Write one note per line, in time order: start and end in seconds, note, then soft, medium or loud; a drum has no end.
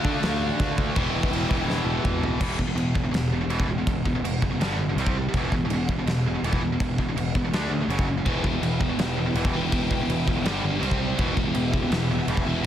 0.00 0.93 D3 loud
0.00 0.94 A3 loud
0.00 0.94 D4 medium
0.00 0.95 D4 loud
0.00 0.94 A4 medium
0.00 0.93 F5 loud
0.05 0.17 D3 medium
0.05 0.95 A3 medium
0.05 0.95 D4 medium
0.05 kick loud
0.09 0.96 D3 medium
0.23 0.48 D2 loud
0.23 snare loud
0.23 china medium
0.60 0.72 D2 loud
0.60 kick medium
0.60 china medium
0.78 0.90 D2 medium
0.78 kick medium
0.94 1.09 E1 medium
0.94 1.49 E2 medium
0.94 1.49 B2 medium
0.94 2.39 E4 medium
0.94 2.39 B4 medium
0.94 2.39 G5 loud
0.94 kick loud
0.94 china medium
0.99 1.48 E3 loud
1.14 1.26 E1 medium
1.23 kick medium
1.31 1.44 E1 loud
1.31 china medium
1.49 1.63 E1 medium
1.49 2.38 E2 medium
1.49 2.39 B2 medium
1.49 2.39 E3 loud
1.49 kick medium
1.66 1.79 E1 medium
1.70 snare medium
1.84 1.98 E1 loud
2.05 2.17 E1 loud
2.05 kick loud
2.05 mid tom loud
2.20 2.34 E1 medium
2.20 floor tom loud
2.39 2.55 E1 medium
2.39 2.57 E2 medium
2.39 2.57 B2 loud
2.39 2.58 E3 medium
2.39 kick loud
2.39 crash loud
2.39 crash medium
2.58 2.74 E1 medium
2.58 2.66 E2 medium
2.58 2.66 B2 medium
2.58 kick medium
2.67 2.74 E2 medium
2.67 2.75 B2 medium
2.75 3.06 E1 medium
2.75 2.93 E2 medium
2.75 2.93 B2 medium
2.75 crash medium
2.95 3.03 E2 medium
2.95 3.02 B2 medium
2.95 kick medium
3.04 3.10 E2 medium
3.04 3.11 B2 medium
3.11 3.42 E1 medium
3.11 3.29 E2 medium
3.11 3.29 B2 medium
3.11 snare loud
3.11 crash medium
3.32 3.41 E2 medium
3.32 3.40 B2 medium
3.41 3.48 E2 medium
3.41 3.49 B2 medium
3.48 3.64 E1 medium
3.48 3.67 E2 medium
3.48 3.67 B2 medium
3.48 3.68 E3 medium
3.48 crash medium
3.60 kick medium
3.66 3.82 E1 medium
3.66 3.77 E2 medium
3.66 3.77 B2 medium
3.78 3.87 E2 medium
3.78 3.87 B2 medium
3.87 4.16 E1 medium
3.87 4.04 E2 medium
3.87 4.05 B2 medium
3.87 kick loud
3.87 crash medium
4.05 4.14 E2 medium
4.05 4.14 B2 medium
4.05 kick medium
4.15 4.24 E2 medium
4.15 4.23 B2 medium
4.22 4.37 E1 medium
4.22 4.41 E2 medium
4.22 4.41 B2 medium
4.22 crash medium
4.42 4.57 F#1 medium
4.42 4.50 E2 medium
4.42 4.50 B2 medium
4.42 kick medium
4.51 4.60 E2 medium
4.51 4.60 B2 medium
4.59 4.75 G1 medium
4.59 4.78 G2 medium
4.59 4.78 D3 loud
4.59 4.78 G3 medium
4.59 snare loud
4.59 crash medium
4.77 4.92 G1 medium
4.77 4.89 G2 medium
4.77 4.88 D3 medium
4.89 4.98 G2 medium
4.89 4.98 D3 medium
4.96 5.26 C2 loud
4.96 5.15 C3 medium
4.96 crash medium
5.00 5.16 G3 loud
5.00 5.16 C4 loud
5.07 kick medium
5.18 5.26 C3 medium
5.18 5.26 G3 medium
5.29 5.36 C3 medium
5.29 5.36 G3 medium
5.33 5.48 E1 medium
5.33 5.52 E2 medium
5.33 kick loud
5.33 crash medium
5.38 5.53 B2 loud
5.38 5.53 E3 loud
5.52 5.67 E1 medium
5.52 5.63 E2 medium
5.52 5.62 B2 medium
5.52 kick medium
5.65 5.72 E2 medium
5.65 5.72 B2 medium
5.69 5.99 E1 medium
5.69 crash medium
5.74 5.88 E2 medium
5.74 5.88 B2 medium
5.89 5.99 E2 medium
5.89 5.98 B2 medium
5.89 kick medium
5.99 6.07 E2 medium
5.99 6.07 B2 medium
6.06 6.36 E1 loud
6.06 6.24 E2 medium
6.06 6.24 B2 medium
6.06 snare loud
6.06 crash medium
6.28 6.34 E2 medium
6.28 6.34 B2 medium
6.35 6.44 E2 medium
6.35 6.44 B2 medium
6.42 6.58 E1 medium
6.42 6.62 E2 medium
6.42 6.62 B2 medium
6.42 crash medium
6.47 6.62 E3 loud
6.53 kick medium
6.60 6.76 E1 medium
6.60 6.71 E2 medium
6.60 6.71 B2 medium
6.73 6.80 E2 medium
6.73 6.80 B2 medium
6.80 7.10 E1 medium
6.80 6.97 E2 medium
6.80 6.97 B2 medium
6.80 kick loud
6.80 crash medium
6.98 7.08 E2 medium
6.98 7.08 B2 medium
6.98 kick medium
7.09 7.15 E2 medium
7.09 7.16 B2 medium
7.16 7.31 E1 medium
7.16 7.33 E2 medium
7.16 7.34 B2 medium
7.16 crash medium
7.35 7.50 E1 medium
7.35 7.44 E2 medium
7.35 7.44 B2 medium
7.35 kick medium
7.45 7.54 E2 medium
7.45 7.53 B2 medium
7.51 7.67 D2 medium
7.51 7.71 D3 medium
7.51 7.71 A3 medium
7.51 7.71 D4 medium
7.51 snare loud
7.51 crash medium
7.70 7.85 D2 medium
7.70 7.81 D3 medium
7.70 7.80 A3 medium
7.81 7.89 D3 medium
7.81 7.90 A3 medium
7.88 8.18 F#1 medium
7.88 8.07 F#2 medium
7.88 8.07 C#3 medium
7.88 8.08 F#3 medium
7.88 crash medium
7.99 kick medium
8.09 8.16 F#2 medium
8.09 8.17 C#3 medium
8.17 8.26 F#2 medium
8.17 8.27 C#3 medium
8.26 8.41 E1 medium
8.26 8.44 E2 medium
8.26 8.43 B2 medium
8.26 8.44 E3 medium
8.26 10.44 E4 medium
8.26 10.43 B4 medium
8.26 11.16 G5 loud
8.26 kick loud
8.26 crash medium
8.43 8.59 E1 medium
8.43 8.51 E2 medium
8.43 8.51 B2 medium
8.43 kick medium
8.52 8.61 E2 medium
8.52 8.61 B2 medium
8.61 8.91 E1 medium
8.61 8.79 E2 medium
8.61 8.79 B2 medium
8.61 crash medium
8.80 8.90 E2 medium
8.80 8.89 B2 medium
8.80 kick medium
8.90 8.98 E2 medium
8.90 8.98 B2 medium
8.98 9.28 E1 medium
8.98 9.16 E2 medium
8.98 9.16 B2 medium
8.98 snare loud
8.98 crash medium
9.17 9.25 E2 medium
9.17 9.25 B2 medium
9.26 9.34 E2 medium
9.26 9.36 B2 medium
9.34 9.50 E1 loud
9.34 9.53 E2 medium
9.34 9.53 B2 medium
9.34 9.54 E3 loud
9.34 crash medium
9.45 kick loud
9.53 9.68 E1 medium
9.53 9.61 E2 medium
9.53 9.60 B2 medium
9.53 9.71 E3 medium
9.62 9.71 E2 medium
9.62 9.70 B2 medium
9.71 10.02 E1 medium
9.71 9.89 E2 medium
9.71 9.89 B2 medium
9.71 10.45 E3 loud
9.71 kick loud
9.71 crash medium
9.91 10.01 E2 medium
9.91 10.00 B2 medium
9.91 kick medium
10.02 10.09 E2 medium
10.02 10.09 B2 medium
10.08 10.23 E1 medium
10.08 10.26 E2 medium
10.08 10.26 B2 medium
10.08 crash medium
10.27 10.42 E1 medium
10.27 10.37 E2 medium
10.27 10.36 B2 medium
10.27 kick medium
10.37 10.46 E2 medium
10.37 10.46 B2 medium
10.44 10.59 G1 loud
10.44 10.63 G2 medium
10.44 10.62 D3 medium
10.44 10.64 G3 medium
10.44 10.82 D4 medium
10.44 12.66 G4 medium
10.44 snare loud
10.44 crash medium
10.63 10.78 G1 medium
10.63 10.70 G2 medium
10.63 10.70 D3 medium
10.71 10.81 G2 medium
10.71 10.79 D3 medium
10.80 11.11 C2 loud
10.80 10.98 C3 medium
10.80 10.98 G3 loud
10.80 10.99 C4 loud
10.80 11.19 C4 medium
10.80 crash medium
10.91 kick medium
10.99 11.07 C3 medium
10.99 11.07 G3 loud
11.08 11.17 C3 medium
11.08 11.18 G3 medium
11.17 11.33 E1 medium
11.17 11.34 E2 medium
11.17 11.35 B2 medium
11.17 11.36 E3 loud
11.17 12.66 B3 medium
11.17 12.66 E5 medium
11.17 kick loud
11.17 crash medium
11.36 11.52 E1 medium
11.36 11.45 E2 medium
11.36 11.45 B2 medium
11.36 kick medium
11.46 11.53 E2 medium
11.46 11.54 B2 medium
11.54 11.85 E1 medium
11.54 11.71 E2 medium
11.54 11.71 B2 medium
11.54 crash medium
11.72 11.81 E2 medium
11.72 11.81 B2 medium
11.72 kick medium
11.82 11.91 E2 medium
11.82 11.91 B2 medium
11.90 12.20 E1 loud
11.90 12.08 E2 medium
11.90 12.09 B2 medium
11.90 snare loud
11.90 crash medium
12.11 12.18 E2 medium
12.11 12.18 B2 medium
12.19 12.27 E2 medium
12.19 12.28 B2 medium
12.27 12.42 E1 loud
12.27 12.45 E2 medium
12.27 12.44 B2 medium
12.27 12.46 E3 medium
12.27 crash medium
12.37 kick medium
12.46 12.61 E1 medium
12.46 12.55 E2 medium
12.46 12.54 B2 medium
12.46 12.64 E3 medium
12.50 12.62 E2 medium
12.56 12.63 E2 medium
12.56 12.63 B2 medium